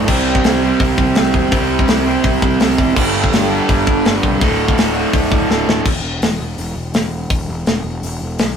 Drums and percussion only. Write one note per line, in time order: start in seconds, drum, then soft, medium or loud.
0.08 kick loud
0.08 crash loud
0.35 kick medium
0.44 snare loud
0.44 open hi-hat medium
0.80 kick loud
0.80 open hi-hat medium
0.98 kick loud
1.15 snare loud
1.15 open hi-hat medium
1.34 kick medium
1.52 kick loud
1.52 open hi-hat medium
1.79 kick medium
1.88 snare loud
1.88 open hi-hat medium
2.24 kick loud
2.24 open hi-hat medium
2.42 kick loud
2.60 snare loud
2.60 open hi-hat medium
2.78 kick medium
2.96 kick loud
2.96 crash loud
3.24 kick medium
3.33 snare loud
3.33 open hi-hat medium
3.69 kick loud
3.69 open hi-hat medium
3.87 kick loud
4.05 snare loud
4.05 open hi-hat medium
4.23 kick medium
4.41 kick loud
4.41 open hi-hat medium
4.68 kick medium
4.78 snare loud
4.78 open hi-hat medium
5.13 kick loud
5.13 open hi-hat medium
5.32 kick loud
5.51 snare medium
5.69 snare loud
5.86 kick loud
5.86 crash loud
6.22 snare loud
6.22 open hi-hat medium
6.58 open hi-hat medium
6.94 snare loud
6.94 open hi-hat medium
7.30 kick loud
7.30 open hi-hat medium
7.66 snare loud
7.66 open hi-hat medium
8.03 open hi-hat medium
8.39 snare loud
8.39 open hi-hat medium